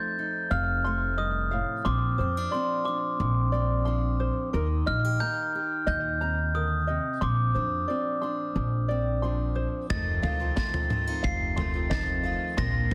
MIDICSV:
0, 0, Header, 1, 7, 480
1, 0, Start_track
1, 0, Tempo, 670391
1, 1327, Time_signature, 4, 2, 24, 8
1, 9266, End_track
2, 0, Start_track
2, 0, Title_t, "Glockenspiel"
2, 0, Program_c, 0, 9
2, 0, Note_on_c, 0, 91, 77
2, 335, Note_off_c, 0, 91, 0
2, 365, Note_on_c, 0, 89, 86
2, 845, Note_on_c, 0, 87, 69
2, 860, Note_off_c, 0, 89, 0
2, 1297, Note_off_c, 0, 87, 0
2, 1326, Note_on_c, 0, 86, 78
2, 1804, Note_on_c, 0, 84, 67
2, 1821, Note_off_c, 0, 86, 0
2, 2043, Note_on_c, 0, 86, 64
2, 2053, Note_off_c, 0, 84, 0
2, 2977, Note_off_c, 0, 86, 0
2, 3488, Note_on_c, 0, 89, 81
2, 3725, Note_on_c, 0, 91, 79
2, 3735, Note_off_c, 0, 89, 0
2, 4202, Note_off_c, 0, 91, 0
2, 4210, Note_on_c, 0, 91, 90
2, 4660, Note_off_c, 0, 91, 0
2, 4689, Note_on_c, 0, 87, 65
2, 5177, Note_on_c, 0, 86, 74
2, 5182, Note_off_c, 0, 87, 0
2, 6822, Note_off_c, 0, 86, 0
2, 7090, Note_on_c, 0, 93, 90
2, 7571, Note_off_c, 0, 93, 0
2, 7580, Note_on_c, 0, 93, 78
2, 8050, Note_on_c, 0, 96, 85
2, 8067, Note_off_c, 0, 93, 0
2, 8530, Note_on_c, 0, 93, 70
2, 8542, Note_off_c, 0, 96, 0
2, 9010, Note_on_c, 0, 94, 98
2, 9022, Note_off_c, 0, 93, 0
2, 9266, Note_off_c, 0, 94, 0
2, 9266, End_track
3, 0, Start_track
3, 0, Title_t, "Ukulele"
3, 0, Program_c, 1, 24
3, 0, Note_on_c, 1, 75, 73
3, 0, Note_on_c, 1, 77, 59
3, 0, Note_on_c, 1, 84, 66
3, 353, Note_off_c, 1, 77, 0
3, 362, Note_on_c, 1, 77, 75
3, 363, Note_off_c, 1, 75, 0
3, 596, Note_off_c, 1, 84, 0
3, 605, Note_on_c, 1, 84, 71
3, 841, Note_on_c, 1, 75, 61
3, 1074, Note_off_c, 1, 77, 0
3, 1082, Note_on_c, 1, 77, 64
3, 1314, Note_off_c, 1, 84, 0
3, 1322, Note_on_c, 1, 84, 82
3, 1324, Note_off_c, 1, 75, 0
3, 1324, Note_off_c, 1, 77, 0
3, 1561, Note_on_c, 1, 72, 68
3, 1798, Note_on_c, 1, 74, 67
3, 2028, Note_off_c, 1, 84, 0
3, 2037, Note_on_c, 1, 84, 66
3, 2512, Note_off_c, 1, 74, 0
3, 2521, Note_on_c, 1, 74, 65
3, 2524, Note_off_c, 1, 72, 0
3, 2750, Note_off_c, 1, 84, 0
3, 2758, Note_on_c, 1, 84, 68
3, 3005, Note_on_c, 1, 72, 61
3, 3242, Note_off_c, 1, 72, 0
3, 3243, Note_off_c, 1, 84, 0
3, 3244, Note_off_c, 1, 74, 0
3, 3245, Note_on_c, 1, 70, 74
3, 3482, Note_on_c, 1, 75, 68
3, 3724, Note_on_c, 1, 82, 74
3, 4191, Note_off_c, 1, 75, 0
3, 4199, Note_on_c, 1, 75, 81
3, 4205, Note_off_c, 1, 70, 0
3, 4438, Note_off_c, 1, 82, 0
3, 4446, Note_on_c, 1, 82, 69
3, 4684, Note_on_c, 1, 70, 62
3, 4912, Note_off_c, 1, 75, 0
3, 4920, Note_on_c, 1, 75, 59
3, 5160, Note_off_c, 1, 82, 0
3, 5163, Note_off_c, 1, 75, 0
3, 5163, Note_on_c, 1, 84, 83
3, 5165, Note_off_c, 1, 70, 0
3, 5401, Note_on_c, 1, 72, 59
3, 5640, Note_on_c, 1, 74, 68
3, 5873, Note_off_c, 1, 84, 0
3, 5882, Note_on_c, 1, 84, 65
3, 6352, Note_off_c, 1, 74, 0
3, 6361, Note_on_c, 1, 74, 62
3, 6363, Note_off_c, 1, 72, 0
3, 6595, Note_off_c, 1, 84, 0
3, 6603, Note_on_c, 1, 84, 65
3, 6840, Note_on_c, 1, 72, 60
3, 7083, Note_off_c, 1, 72, 0
3, 7083, Note_off_c, 1, 74, 0
3, 7084, Note_off_c, 1, 84, 0
3, 7088, Note_on_c, 1, 75, 76
3, 7321, Note_on_c, 1, 77, 65
3, 7563, Note_on_c, 1, 84, 75
3, 8030, Note_off_c, 1, 77, 0
3, 8038, Note_on_c, 1, 77, 77
3, 8047, Note_off_c, 1, 75, 0
3, 8271, Note_off_c, 1, 84, 0
3, 8279, Note_on_c, 1, 84, 70
3, 8518, Note_on_c, 1, 75, 68
3, 8748, Note_off_c, 1, 77, 0
3, 8757, Note_on_c, 1, 77, 65
3, 8994, Note_off_c, 1, 84, 0
3, 9001, Note_off_c, 1, 77, 0
3, 9002, Note_off_c, 1, 75, 0
3, 9002, Note_on_c, 1, 84, 82
3, 9244, Note_on_c, 1, 72, 59
3, 9266, Note_off_c, 1, 72, 0
3, 9266, Note_off_c, 1, 84, 0
3, 9266, End_track
4, 0, Start_track
4, 0, Title_t, "Steel-string acoustic guitar"
4, 0, Program_c, 2, 25
4, 0, Note_on_c, 2, 41, 58
4, 0, Note_on_c, 2, 53, 50
4, 0, Note_on_c, 2, 57, 48
4, 0, Note_on_c, 2, 63, 49
4, 0, Note_on_c, 2, 65, 51
4, 125, Note_off_c, 2, 63, 0
4, 134, Note_on_c, 2, 63, 47
4, 373, Note_on_c, 2, 48, 61
4, 609, Note_off_c, 2, 57, 0
4, 619, Note_on_c, 2, 57, 53
4, 848, Note_off_c, 2, 41, 0
4, 851, Note_on_c, 2, 43, 55
4, 1089, Note_off_c, 2, 43, 0
4, 1093, Note_on_c, 2, 45, 51
4, 1300, Note_off_c, 2, 53, 0
4, 1302, Note_off_c, 2, 48, 0
4, 1302, Note_off_c, 2, 63, 0
4, 1305, Note_off_c, 2, 57, 0
4, 1330, Note_off_c, 2, 45, 0
4, 1334, Note_on_c, 2, 46, 61
4, 1336, Note_off_c, 2, 65, 0
4, 1337, Note_on_c, 2, 60, 49
4, 1570, Note_off_c, 2, 60, 0
4, 1578, Note_on_c, 2, 60, 52
4, 1698, Note_off_c, 2, 60, 0
4, 1698, Note_on_c, 2, 62, 42
4, 1813, Note_on_c, 2, 53, 53
4, 1821, Note_on_c, 2, 60, 54
4, 2052, Note_off_c, 2, 62, 0
4, 2060, Note_on_c, 2, 62, 55
4, 2290, Note_off_c, 2, 46, 0
4, 2291, Note_on_c, 2, 41, 62
4, 2525, Note_off_c, 2, 60, 0
4, 2534, Note_on_c, 2, 60, 49
4, 2759, Note_off_c, 2, 53, 0
4, 2765, Note_off_c, 2, 62, 0
4, 2767, Note_on_c, 2, 53, 50
4, 2774, Note_on_c, 2, 62, 54
4, 3218, Note_off_c, 2, 53, 0
4, 3221, Note_off_c, 2, 62, 0
4, 3222, Note_off_c, 2, 60, 0
4, 3249, Note_off_c, 2, 41, 0
4, 3251, Note_on_c, 2, 51, 59
4, 3258, Note_on_c, 2, 63, 48
4, 3488, Note_on_c, 2, 65, 59
4, 3613, Note_off_c, 2, 65, 0
4, 3613, Note_on_c, 2, 67, 48
4, 3726, Note_off_c, 2, 63, 0
4, 3732, Note_on_c, 2, 58, 53
4, 3735, Note_on_c, 2, 63, 49
4, 3967, Note_off_c, 2, 67, 0
4, 3975, Note_on_c, 2, 67, 58
4, 4217, Note_on_c, 2, 46, 57
4, 4450, Note_off_c, 2, 63, 0
4, 4453, Note_on_c, 2, 60, 52
4, 4570, Note_off_c, 2, 60, 0
4, 4691, Note_off_c, 2, 46, 0
4, 4694, Note_on_c, 2, 50, 54
4, 4928, Note_off_c, 2, 50, 0
4, 4931, Note_on_c, 2, 48, 53
4, 5140, Note_off_c, 2, 58, 0
4, 5142, Note_off_c, 2, 67, 0
4, 5169, Note_off_c, 2, 48, 0
4, 5169, Note_off_c, 2, 51, 0
4, 5173, Note_on_c, 2, 46, 60
4, 5176, Note_on_c, 2, 60, 47
4, 5415, Note_on_c, 2, 62, 48
4, 5653, Note_on_c, 2, 53, 52
4, 5655, Note_off_c, 2, 60, 0
4, 5658, Note_on_c, 2, 60, 48
4, 5885, Note_off_c, 2, 62, 0
4, 5893, Note_on_c, 2, 62, 50
4, 6129, Note_off_c, 2, 46, 0
4, 6130, Note_on_c, 2, 41, 54
4, 6375, Note_off_c, 2, 60, 0
4, 6378, Note_on_c, 2, 60, 46
4, 6609, Note_off_c, 2, 53, 0
4, 6610, Note_off_c, 2, 62, 0
4, 6612, Note_on_c, 2, 53, 56
4, 6619, Note_on_c, 2, 62, 47
4, 7063, Note_off_c, 2, 62, 0
4, 7088, Note_off_c, 2, 41, 0
4, 7097, Note_off_c, 2, 53, 0
4, 7097, Note_on_c, 2, 41, 53
4, 7100, Note_off_c, 2, 60, 0
4, 7100, Note_on_c, 2, 53, 48
4, 7103, Note_on_c, 2, 57, 46
4, 7106, Note_on_c, 2, 63, 48
4, 7115, Note_on_c, 2, 69, 56
4, 7323, Note_off_c, 2, 63, 0
4, 7332, Note_on_c, 2, 63, 50
4, 7562, Note_off_c, 2, 57, 0
4, 7564, Note_off_c, 2, 53, 0
4, 7567, Note_on_c, 2, 53, 53
4, 7571, Note_on_c, 2, 57, 48
4, 7801, Note_off_c, 2, 63, 0
4, 7803, Note_on_c, 2, 60, 54
4, 7929, Note_off_c, 2, 60, 0
4, 7929, Note_on_c, 2, 63, 42
4, 8045, Note_on_c, 2, 48, 58
4, 8281, Note_off_c, 2, 57, 0
4, 8289, Note_on_c, 2, 57, 53
4, 8514, Note_off_c, 2, 53, 0
4, 8522, Note_off_c, 2, 63, 0
4, 8523, Note_on_c, 2, 53, 60
4, 8525, Note_off_c, 2, 48, 0
4, 8530, Note_on_c, 2, 63, 51
4, 8976, Note_off_c, 2, 53, 0
4, 8979, Note_off_c, 2, 57, 0
4, 8979, Note_off_c, 2, 63, 0
4, 8992, Note_off_c, 2, 69, 0
4, 8999, Note_on_c, 2, 46, 66
4, 9006, Note_on_c, 2, 53, 51
4, 9007, Note_on_c, 2, 60, 51
4, 9012, Note_off_c, 2, 41, 0
4, 9012, Note_on_c, 2, 62, 52
4, 9019, Note_on_c, 2, 65, 56
4, 9233, Note_off_c, 2, 62, 0
4, 9241, Note_on_c, 2, 62, 51
4, 9266, Note_off_c, 2, 46, 0
4, 9266, Note_off_c, 2, 53, 0
4, 9266, Note_off_c, 2, 60, 0
4, 9266, Note_off_c, 2, 62, 0
4, 9266, Note_off_c, 2, 65, 0
4, 9266, End_track
5, 0, Start_track
5, 0, Title_t, "Twelve-string acoustic guitar"
5, 0, Program_c, 3, 25
5, 7087, Note_on_c, 3, 41, 70
5, 7091, Note_on_c, 3, 48, 66
5, 7093, Note_on_c, 3, 51, 74
5, 7097, Note_on_c, 3, 57, 68
5, 7097, Note_on_c, 3, 60, 80
5, 7102, Note_on_c, 3, 65, 79
5, 7312, Note_off_c, 3, 51, 0
5, 7319, Note_off_c, 3, 57, 0
5, 7320, Note_on_c, 3, 51, 49
5, 7327, Note_off_c, 3, 41, 0
5, 7327, Note_off_c, 3, 60, 0
5, 7327, Note_on_c, 3, 57, 52
5, 7328, Note_off_c, 3, 65, 0
5, 7329, Note_off_c, 3, 48, 0
5, 7336, Note_on_c, 3, 60, 51
5, 7337, Note_on_c, 3, 65, 58
5, 7435, Note_off_c, 3, 65, 0
5, 7441, Note_off_c, 3, 60, 0
5, 7443, Note_off_c, 3, 51, 0
5, 7444, Note_on_c, 3, 65, 46
5, 7447, Note_off_c, 3, 57, 0
5, 7449, Note_on_c, 3, 60, 46
5, 7455, Note_on_c, 3, 57, 44
5, 7459, Note_on_c, 3, 51, 35
5, 7562, Note_on_c, 3, 41, 60
5, 7563, Note_off_c, 3, 51, 0
5, 7565, Note_off_c, 3, 65, 0
5, 7566, Note_off_c, 3, 57, 0
5, 7567, Note_off_c, 3, 60, 0
5, 7568, Note_on_c, 3, 48, 62
5, 7574, Note_on_c, 3, 57, 67
5, 7577, Note_on_c, 3, 65, 67
5, 7676, Note_off_c, 3, 65, 0
5, 7684, Note_off_c, 3, 41, 0
5, 7685, Note_on_c, 3, 65, 47
5, 7687, Note_off_c, 3, 48, 0
5, 7688, Note_off_c, 3, 57, 0
5, 7691, Note_on_c, 3, 60, 43
5, 7697, Note_on_c, 3, 57, 44
5, 7704, Note_on_c, 3, 51, 37
5, 7792, Note_off_c, 3, 51, 0
5, 7801, Note_on_c, 3, 51, 45
5, 7802, Note_off_c, 3, 57, 0
5, 7805, Note_off_c, 3, 65, 0
5, 7808, Note_off_c, 3, 60, 0
5, 7810, Note_on_c, 3, 57, 52
5, 7817, Note_on_c, 3, 60, 48
5, 7824, Note_on_c, 3, 65, 50
5, 7917, Note_off_c, 3, 65, 0
5, 7923, Note_off_c, 3, 51, 0
5, 7925, Note_on_c, 3, 65, 46
5, 7926, Note_off_c, 3, 60, 0
5, 7928, Note_off_c, 3, 57, 0
5, 7934, Note_on_c, 3, 60, 43
5, 7941, Note_on_c, 3, 57, 39
5, 7947, Note_on_c, 3, 51, 38
5, 8273, Note_off_c, 3, 51, 0
5, 8282, Note_on_c, 3, 51, 47
5, 8285, Note_off_c, 3, 57, 0
5, 8285, Note_off_c, 3, 65, 0
5, 8290, Note_off_c, 3, 60, 0
5, 8294, Note_on_c, 3, 57, 47
5, 8298, Note_on_c, 3, 60, 55
5, 8303, Note_on_c, 3, 65, 51
5, 8395, Note_off_c, 3, 65, 0
5, 8404, Note_off_c, 3, 51, 0
5, 8404, Note_on_c, 3, 65, 49
5, 8405, Note_off_c, 3, 60, 0
5, 8410, Note_off_c, 3, 57, 0
5, 8414, Note_on_c, 3, 60, 36
5, 8417, Note_on_c, 3, 57, 34
5, 8422, Note_on_c, 3, 51, 34
5, 8518, Note_off_c, 3, 51, 0
5, 8523, Note_off_c, 3, 57, 0
5, 8524, Note_on_c, 3, 41, 59
5, 8525, Note_off_c, 3, 60, 0
5, 8525, Note_off_c, 3, 65, 0
5, 8527, Note_on_c, 3, 48, 60
5, 8527, Note_on_c, 3, 51, 66
5, 8532, Note_on_c, 3, 57, 68
5, 8534, Note_on_c, 3, 60, 71
5, 8535, Note_on_c, 3, 65, 75
5, 8752, Note_off_c, 3, 51, 0
5, 8760, Note_on_c, 3, 51, 52
5, 8761, Note_off_c, 3, 57, 0
5, 8765, Note_off_c, 3, 41, 0
5, 8765, Note_off_c, 3, 60, 0
5, 8766, Note_off_c, 3, 48, 0
5, 8770, Note_off_c, 3, 65, 0
5, 8770, Note_on_c, 3, 57, 53
5, 8774, Note_on_c, 3, 60, 58
5, 8778, Note_on_c, 3, 65, 60
5, 9003, Note_off_c, 3, 51, 0
5, 9004, Note_on_c, 3, 46, 72
5, 9007, Note_off_c, 3, 60, 0
5, 9008, Note_off_c, 3, 57, 0
5, 9008, Note_off_c, 3, 65, 0
5, 9010, Note_on_c, 3, 50, 68
5, 9011, Note_on_c, 3, 53, 76
5, 9015, Note_on_c, 3, 58, 71
5, 9015, Note_on_c, 3, 60, 77
5, 9016, Note_on_c, 3, 65, 76
5, 9235, Note_off_c, 3, 53, 0
5, 9240, Note_off_c, 3, 58, 0
5, 9244, Note_on_c, 3, 53, 46
5, 9245, Note_off_c, 3, 46, 0
5, 9247, Note_off_c, 3, 60, 0
5, 9248, Note_off_c, 3, 50, 0
5, 9251, Note_off_c, 3, 65, 0
5, 9266, Note_off_c, 3, 53, 0
5, 9266, End_track
6, 0, Start_track
6, 0, Title_t, "Upright bass"
6, 0, Program_c, 4, 32
6, 365, Note_on_c, 4, 29, 80
6, 1155, Note_off_c, 4, 29, 0
6, 1329, Note_on_c, 4, 34, 89
6, 1525, Note_off_c, 4, 34, 0
6, 1568, Note_on_c, 4, 41, 69
6, 1765, Note_off_c, 4, 41, 0
6, 2290, Note_on_c, 4, 34, 85
6, 3077, Note_off_c, 4, 34, 0
6, 3250, Note_on_c, 4, 39, 85
6, 3446, Note_off_c, 4, 39, 0
6, 3490, Note_on_c, 4, 34, 69
6, 3686, Note_off_c, 4, 34, 0
6, 4203, Note_on_c, 4, 39, 82
6, 4993, Note_off_c, 4, 39, 0
6, 5167, Note_on_c, 4, 34, 88
6, 5364, Note_off_c, 4, 34, 0
6, 5408, Note_on_c, 4, 41, 69
6, 5604, Note_off_c, 4, 41, 0
6, 6126, Note_on_c, 4, 34, 77
6, 6914, Note_off_c, 4, 34, 0
6, 7091, Note_on_c, 4, 29, 91
6, 7286, Note_off_c, 4, 29, 0
6, 7326, Note_on_c, 4, 36, 74
6, 7523, Note_off_c, 4, 36, 0
6, 8052, Note_on_c, 4, 29, 78
6, 8838, Note_off_c, 4, 29, 0
6, 9006, Note_on_c, 4, 34, 89
6, 9203, Note_off_c, 4, 34, 0
6, 9244, Note_on_c, 4, 41, 73
6, 9266, Note_off_c, 4, 41, 0
6, 9266, End_track
7, 0, Start_track
7, 0, Title_t, "Drums"
7, 7091, Note_on_c, 9, 36, 91
7, 7091, Note_on_c, 9, 43, 67
7, 7162, Note_off_c, 9, 36, 0
7, 7162, Note_off_c, 9, 43, 0
7, 7328, Note_on_c, 9, 43, 68
7, 7400, Note_off_c, 9, 43, 0
7, 7567, Note_on_c, 9, 38, 69
7, 7570, Note_on_c, 9, 36, 93
7, 7639, Note_off_c, 9, 38, 0
7, 7642, Note_off_c, 9, 36, 0
7, 7689, Note_on_c, 9, 43, 67
7, 7761, Note_off_c, 9, 43, 0
7, 7807, Note_on_c, 9, 47, 64
7, 7879, Note_off_c, 9, 47, 0
7, 8046, Note_on_c, 9, 43, 61
7, 8049, Note_on_c, 9, 36, 84
7, 8118, Note_off_c, 9, 43, 0
7, 8121, Note_off_c, 9, 36, 0
7, 8288, Note_on_c, 9, 43, 77
7, 8360, Note_off_c, 9, 43, 0
7, 8527, Note_on_c, 9, 38, 74
7, 8527, Note_on_c, 9, 43, 74
7, 8529, Note_on_c, 9, 36, 99
7, 8599, Note_off_c, 9, 38, 0
7, 8599, Note_off_c, 9, 43, 0
7, 8601, Note_off_c, 9, 36, 0
7, 9007, Note_on_c, 9, 43, 69
7, 9008, Note_on_c, 9, 36, 88
7, 9078, Note_off_c, 9, 43, 0
7, 9080, Note_off_c, 9, 36, 0
7, 9266, End_track
0, 0, End_of_file